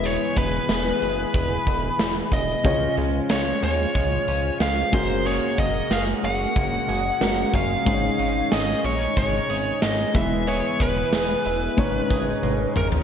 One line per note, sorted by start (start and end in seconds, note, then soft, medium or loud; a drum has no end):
0.00 0.18 E1 medium
0.00 0.65 E3 medium
0.00 2.62 E3 medium
0.00 2.28 G#3 medium
0.00 2.28 B3 medium
0.00 2.62 B3 medium
0.00 2.28 E4 medium
0.00 2.62 G#4 medium
0.00 2.29 B4 medium
0.00 closed hi-hat medium
0.06 0.37 C#5 medium
0.36 0.60 E1 loud
0.36 2.33 B4 medium
0.36 kick medium
0.36 closed hi-hat medium
0.69 0.93 E1 loud
0.69 snare loud
0.69 closed hi-hat medium
1.02 1.25 F#1 medium
1.02 closed hi-hat medium
1.34 1.58 E1 loud
1.34 kick medium
1.34 closed hi-hat medium
1.67 1.90 E1 loud
1.67 kick medium
1.67 closed hi-hat medium
1.99 2.23 E1 medium
1.99 snare loud
1.99 closed hi-hat medium
2.32 2.55 E1 medium
2.32 2.94 D#5 medium
2.32 kick medium
2.32 closed hi-hat medium
2.64 2.88 C#2 loud
2.64 3.59 C#3 medium
2.64 4.91 C#3 medium
2.64 3.94 F3 medium
2.64 4.89 G#3 medium
2.64 10.11 G#3 medium
2.64 4.89 C#4 soft
2.64 3.30 C#4 medium
2.64 4.91 F4 medium
2.64 4.89 F4 medium
2.64 4.90 C#5 medium
2.64 kick loud
2.64 closed hi-hat medium
2.97 3.21 C#2 loud
2.97 3.62 G#3 medium
2.97 closed hi-hat medium
3.30 3.54 C#2 loud
3.30 4.27 C#4 medium
3.30 3.61 C#5 medium
3.30 snare loud
3.30 closed hi-hat medium
3.63 3.86 D#2 medium
3.63 4.93 G#3 medium
3.63 4.57 C#5 medium
3.63 closed hi-hat medium
3.95 4.19 C#2 loud
3.95 4.59 F3 medium
3.95 kick medium
3.95 closed hi-hat medium
4.28 4.51 C#2 medium
4.28 5.58 C#4 medium
4.28 closed hi-hat medium
4.60 4.84 C#2 medium
4.60 5.00 F3 medium
4.60 4.92 F5 medium
4.60 snare loud
4.60 closed hi-hat medium
4.92 5.40 F#1 medium
4.92 7.17 G#3 medium
4.92 5.24 A#3 medium
4.92 7.84 A#3 medium
4.92 7.17 C#4 medium
4.92 7.84 F#4 medium
4.92 7.18 F#4 medium
4.92 7.18 A#4 medium
4.92 5.27 C5 medium
4.92 kick loud
4.92 closed hi-hat medium
5.25 6.55 A#3 medium
5.25 5.91 G#4 medium
5.25 5.59 C#5 medium
5.25 closed hi-hat medium
5.58 5.82 F#1 loud
5.58 6.23 C#4 medium
5.58 5.93 D#5 medium
5.58 kick medium
5.58 closed hi-hat medium
5.91 6.14 F#1 loud
5.91 6.89 G#4 medium
5.91 6.01 F5 medium
5.91 snare medium
5.91 closed hi-hat medium
6.23 6.47 F#1 medium
6.23 7.54 C#4 medium
6.23 7.55 F#5 loud
6.23 closed hi-hat medium
6.56 6.80 F#1 medium
6.56 7.20 A#3 medium
6.56 kick medium
6.56 closed hi-hat medium
6.89 7.12 F#1 loud
6.89 7.87 G#4 medium
6.89 closed hi-hat medium
7.21 7.45 F#1 medium
7.21 7.84 G#3 medium
7.21 7.93 A#3 medium
7.21 7.84 C#4 medium
7.21 7.87 F#4 soft
7.21 7.87 A#4 medium
7.21 snare loud
7.21 closed hi-hat medium
7.54 7.77 F#1 medium
7.54 8.19 C#4 medium
7.54 8.55 F5 medium
7.54 kick medium
7.54 closed hi-hat medium
7.85 8.10 G#1 loud
7.85 8.80 G#2 medium
7.85 10.14 D#3 medium
7.85 10.10 G#3 medium
7.85 10.11 C#4 medium
7.85 10.13 C#4 medium
7.85 10.13 D#4 medium
7.85 10.11 D#4 medium
7.85 8.51 G#4 medium
7.85 7.94 C5 medium
7.85 kick loud
7.85 closed hi-hat medium
7.94 10.15 C#5 medium
8.19 8.43 G#1 medium
8.19 8.83 C#4 medium
8.19 closed hi-hat medium
8.52 8.75 G#1 medium
8.52 9.49 G#4 medium
8.52 8.85 D#5 medium
8.52 snare loud
8.52 closed hi-hat medium
8.84 9.08 A#1 medium
8.84 10.21 C#4 medium
8.84 9.17 C#5 medium
8.84 closed hi-hat medium
9.17 9.40 G#1 loud
9.17 9.82 G#3 medium
9.17 9.79 C#5 medium
9.17 kick medium
9.17 closed hi-hat medium
9.50 9.73 G#1 loud
9.50 10.48 G#4 medium
9.50 closed hi-hat medium
9.82 10.06 G#1 medium
9.82 12.43 G#3 medium
9.82 10.16 D#5 medium
9.82 snare loud
9.82 closed hi-hat medium
10.14 10.62 E1 medium
10.14 10.46 E3 medium
10.14 11.09 E3 medium
10.14 11.76 E3 medium
10.14 11.74 G#3 medium
10.14 11.74 B3 medium
10.14 11.76 B3 medium
10.14 11.75 E4 medium
10.14 11.76 G#4 medium
10.14 11.75 B4 medium
10.14 10.46 E5 medium
10.14 kick medium
10.14 closed hi-hat medium
10.47 11.77 E3 medium
10.47 11.12 G#4 medium
10.47 10.81 C#5 medium
10.47 closed hi-hat medium
10.80 11.04 E1 loud
10.80 11.44 E4 medium
10.80 12.72 B4 medium
10.80 kick medium
10.80 closed hi-hat medium
11.13 11.36 E1 medium
11.13 12.10 G#4 medium
11.13 snare loud
11.13 closed hi-hat medium
11.45 11.69 E1 medium
11.45 11.84 E4 medium
11.45 closed hi-hat medium
11.77 12.01 G#1 loud
11.77 12.72 G#2 medium
11.77 13.03 D#3 medium
11.77 13.03 G#3 medium
11.77 13.03 C#4 medium
11.77 13.03 D#4 medium
11.77 13.03 C#5 medium
11.77 kick medium
11.77 closed hi-hat medium
12.10 12.34 G#1 loud
12.10 13.03 G#4 medium
12.10 kick medium
12.10 closed hi-hat medium
12.43 12.67 G#1 medium
12.43 13.03 G#3 medium
12.43 high tom medium
12.76 12.99 G#1 medium
12.76 13.03 C#4 medium
12.76 12.85 A#4 medium
12.76 mid tom medium
12.92 floor tom medium